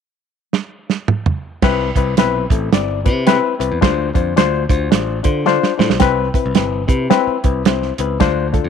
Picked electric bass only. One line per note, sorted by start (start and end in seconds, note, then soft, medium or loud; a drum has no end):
1.62 1.91 C2 loud
1.95 2.14 C2 medium
2.17 2.46 B1 medium
2.50 2.69 A1 medium
2.73 3.08 G1 medium
3.06 3.39 C3 medium
3.60 3.70 C2 medium
3.72 3.81 E2 medium
3.82 4.10 D2 loud
4.15 4.34 F2 medium
4.37 4.65 D2 medium
4.70 4.89 D2 medium
4.92 5.20 A1 medium
5.25 5.57 D3 medium
5.79 5.89 A2 medium
5.91 6.00 B1 medium
6.00 6.29 C2 medium
6.46 6.55 C2 medium
6.57 6.85 G1 medium
6.88 7.07 C3 medium
7.27 muted picked electric bass stroke soft
7.44 7.91 C2 medium
7.99 8.18 C#2 medium
8.20 8.58 D2 loud
8.65 8.69 F2 medium